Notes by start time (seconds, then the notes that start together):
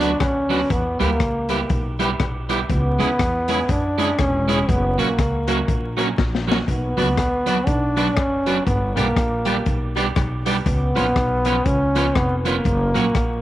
Already playing: D2 D4
0.00 F#3 B3 D4 F#4 B4, closed hi-hat
0.20 D2 C#4 F#4 B4, kick, cross-stick, closed hi-hat
0.49 F#3 B3 D4 F#4 B4, open hi-hat
0.70 E2 B3, kick, closed hi-hat
0.99 D2 G3 A#3 B3 E4 G4 B4, closed hi-hat
1.20 C#2, kick, cross-stick, closed hi-hat
1.49 G3 B3 E4 G4 B4, closed hi-hat
1.70 B1, kick, closed hi-hat
1.99 G3 B3 E4 G4 B4, closed hi-hat
2.20 B1 G4 B4, kick, cross-stick, closed hi-hat
2.49 G3 B3 E4 G4 B4, closed hi-hat
2.70 C#2 B3, kick, closed hi-hat
2.99 D2 G#3 C#4 E4 G#4 C#5, closed hi-hat
3.19 E2, kick, cross-stick, closed hi-hat
3.48 G#3 C#4 E4 G#4 C#5, closed hi-hat
3.69 F#2 D4, kick, closed hi-hat
3.98 G#3 C#4 E4 G#4 C#5, closed hi-hat
4.19 E1 C#4 G#4 C#5, kick, cross-stick, closed hi-hat
4.48 G#3 C#4 E4 G#4 C#5, closed hi-hat
4.69 F#1 B3, kick, closed hi-hat
4.98 A#1 F#3 A#3 C#4 F#4 A#4 C#5, closed hi-hat
5.19 C#2, kick, cross-stick, closed hi-hat
5.47 F#3 A#3 C#4 F#4 A#4 C#5, closed hi-hat
5.68 A#1, kick, closed hi-hat
5.97 F#3 A#3 C#4 F#4 A#4 C#5, closed hi-hat
6.18 A#1 A#4 C#5, kick, snare
6.35 snare
6.47 F#3 A#3 C#4 F#4 A#4 C#5
6.52 snare
6.68 B1 B3, kick, closed hi-hat
6.97 C#2 F#3 B3 D4 F#4 B4 D5, closed hi-hat
7.17 D2, kick, cross-stick, closed hi-hat
7.46 F#3 B3 D4 F#4 B4 D5, closed hi-hat
7.67 B1 D4, kick, closed hi-hat
7.96 F#3 B3 D4 F#4 B4 D5, closed hi-hat
8.16 F#1 C#4 B4 D5, kick, cross-stick, closed hi-hat
8.46 F#3 B3 D4 F#4 B4 D5, closed hi-hat
8.67 G1 B3, kick, closed hi-hat
8.96 B1 G3 A#3 B3 D4 G4 B4 D5, closed hi-hat
9.16 A#1, kick, cross-stick, closed hi-hat
9.45 G3 B3 D4 G4 B4 D5, closed hi-hat
9.66 B1, kick, closed hi-hat
9.96 G3 B3 D4 G4 B4 D5, closed hi-hat
10.16 B1 B4 D5, kick, cross-stick, closed hi-hat
10.46 G3 B3 D4 G4 B4 D5, closed hi-hat
10.66 C#2 B3, kick, closed hi-hat
10.95 A#1 F3 B3 C#4 F4 B4 C#5, closed hi-hat
11.16 B1, kick, cross-stick, closed hi-hat
11.45 F3 B3 C#4 F4 B4 C#5, closed hi-hat
11.65 C#2 C#4, kick, closed hi-hat
11.95 F3 B3 C#4 F4 B4 C#5, closed hi-hat
12.15 F1 B3 B4 C#5, kick, cross-stick, closed hi-hat
12.38 B3
12.45 F3 A#3 B3 C#4 F4 B4 C#5, closed hi-hat
12.65 F#1, kick, closed hi-hat
12.94 A#1 F#3 A#3 C#4 F#4 A#4 C#5, closed hi-hat
13.15 A#1, kick, cross-stick, closed hi-hat